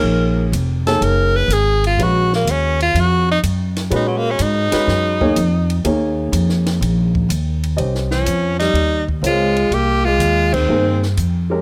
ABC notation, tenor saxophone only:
X:1
M:4/4
L:1/16
Q:"Swing" 1/4=124
K:Ebm
V:1 name="Tenor saxophone"
B4 z2 =A2 B2 c2 _A2 F2 | G2 B,2 D2 F2 G2 E2 z4 | E G, B, D E12 | z16 |
[K:Fm] z2 D4 E4 z2 F4 | G2 F4 C4 z6 |]